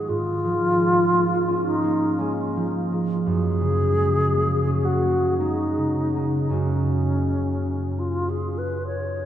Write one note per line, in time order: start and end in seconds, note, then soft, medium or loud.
0.00 0.13 D#3 soft
0.00 0.78 G#3 soft
0.00 0.13 B3 soft
0.00 2.17 D#4 soft
0.00 0.10 G#4 soft
0.09 3.30 G#2 soft
0.09 1.65 F4 medium
0.44 2.55 F3 soft
0.79 2.19 G#3 soft
1.12 1.83 A#3 soft
1.48 4.66 C#4 soft
1.66 2.20 D#4 medium
1.84 4.32 A#3 soft
2.19 2.91 G#3 soft
2.19 2.73 C#4 soft
2.56 3.30 F3 soft
2.92 3.96 G#3 soft
3.25 6.48 F#2 soft
3.25 4.86 G#4 medium
3.61 5.76 C#3 soft
3.97 5.39 G#3 soft
4.33 5.02 A#3 soft
4.67 6.51 C#4 soft
4.84 5.37 F#4 soft
5.03 6.50 A#3 soft
5.38 6.15 G#3 soft
5.38 6.53 D#4 medium
5.77 9.25 C#3 soft
6.16 6.49 G#3 soft
6.49 9.25 F#2 soft
6.49 9.25 G#3 soft
6.49 9.25 A#3 soft
6.49 8.00 C#4 soft
6.49 9.25 C#4 soft
6.53 9.25 F#4 soft
7.99 8.31 F4 soft
8.29 8.59 G#4 soft
8.58 8.86 B4 soft
8.87 9.25 C#5 soft